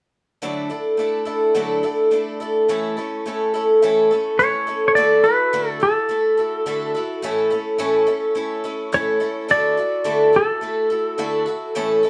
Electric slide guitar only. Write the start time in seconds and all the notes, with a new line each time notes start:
4.39 C#5
4.88 C#5
4.95 D5
5.24 B4
5.70 A4
5.83 A4
8.94 C#5
9.51 D5
10.36 A4